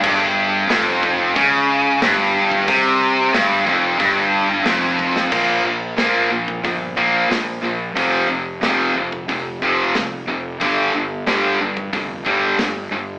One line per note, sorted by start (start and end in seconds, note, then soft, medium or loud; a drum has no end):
0.03 0.66 G1 loud
0.03 0.68 G2 loud
0.03 kick loud
0.03 crash loud
0.69 1.31 F1 loud
0.69 1.34 F2 loud
0.69 snare loud
0.69 open hi-hat medium
1.03 kick medium
1.36 1.98 C#2 loud
1.36 2.01 C#3 loud
1.36 kick loud
1.36 open hi-hat medium
2.01 2.63 G1 loud
2.01 2.67 G2 loud
2.01 snare loud
2.01 open hi-hat medium
2.52 kick medium
2.68 3.30 C2 loud
2.68 3.33 C3 loud
2.68 kick loud
2.68 open hi-hat medium
3.32 3.64 G1 medium
3.32 3.65 G2 loud
3.32 snare loud
3.32 open hi-hat medium
3.66 3.97 F1 medium
3.66 3.98 F2 medium
3.66 kick medium
3.98 4.62 G1 loud
3.98 4.64 G2 loud
3.98 kick loud
3.98 open hi-hat medium
4.64 5.27 F1 medium
4.64 5.30 F2 loud
4.64 snare loud
4.64 open hi-hat medium
4.99 kick medium
5.16 snare medium
5.32 5.63 A#1 medium
5.32 5.63 A#2 medium
5.32 5.63 F3 medium
5.32 5.63 A#3 medium
5.32 kick loud
5.32 crash loud
5.64 5.95 A#1 medium
5.64 5.95 A#2 medium
5.64 5.95 F3 medium
5.97 6.60 A#2 medium
5.97 6.29 A#2 medium
5.97 6.30 F3 medium
5.97 6.30 A#3 medium
5.97 snare loud
5.97 open hi-hat medium
6.31 6.61 A#2 medium
6.31 6.61 F3 medium
6.48 kick medium
6.64 6.95 G1 medium
6.64 6.94 A#2 medium
6.64 6.94 F3 medium
6.64 kick medium
6.64 open hi-hat soft
6.97 7.28 A#1 medium
6.97 7.28 A#2 medium
6.97 7.28 F3 medium
6.97 7.29 A#3 medium
6.97 kick medium
7.29 7.60 A#1 medium
7.29 7.60 A#2 medium
7.29 7.60 F3 medium
7.29 snare loud
7.29 open hi-hat medium
7.63 7.96 A#1 medium
7.63 7.93 A#2 medium
7.63 7.94 F3 medium
7.96 8.27 F1 medium
7.96 8.28 F2 medium
7.96 8.28 C3 medium
7.96 8.28 F3 medium
7.96 kick loud
7.96 open hi-hat medium
8.29 8.60 F1 medium
8.29 8.59 F2 medium
8.29 8.60 C3 medium
8.63 8.93 F1 medium
8.63 8.94 F2 medium
8.63 8.94 C3 medium
8.63 8.94 F3 medium
8.63 snare loud
8.63 open hi-hat soft
8.96 9.26 F1 medium
8.96 9.26 F2 medium
8.96 9.26 C3 medium
9.12 kick medium
9.29 9.59 F1 medium
9.29 9.59 F2 medium
9.29 9.59 C3 medium
9.29 kick medium
9.29 open hi-hat soft
9.62 9.92 F1 medium
9.62 9.93 F2 medium
9.62 9.94 C3 medium
9.62 9.94 F3 medium
9.62 kick medium
9.95 10.25 C2 medium
9.95 10.25 F2 medium
9.95 10.25 C3 medium
9.95 snare loud
9.95 open hi-hat soft
10.27 10.58 F1 medium
10.27 10.57 F2 medium
10.27 10.58 C3 medium
10.60 10.91 G1 medium
10.60 10.91 G2 medium
10.60 10.92 D3 medium
10.60 10.92 G3 medium
10.60 kick loud
10.60 open hi-hat soft
10.94 11.24 G1 medium
10.94 11.24 G2 medium
10.94 11.24 D3 medium
11.26 11.89 G2 medium
11.26 11.58 G2 medium
11.26 11.58 D3 medium
11.26 11.58 G3 medium
11.26 snare loud
11.26 open hi-hat soft
11.61 11.90 G2 medium
11.61 11.90 D3 medium
11.77 kick medium
11.93 12.24 F1 medium
11.93 12.22 G2 medium
11.93 12.23 D3 medium
11.93 kick medium
11.93 open hi-hat soft
12.25 12.57 G1 medium
12.25 12.56 G2 medium
12.25 12.56 D3 medium
12.25 12.57 G3 medium
12.25 kick medium
12.58 12.89 G1 medium
12.58 12.88 G2 medium
12.58 12.88 D3 medium
12.58 snare loud
12.58 open hi-hat medium
12.92 13.19 G1 medium
12.92 13.19 G2 medium
12.92 13.19 D3 medium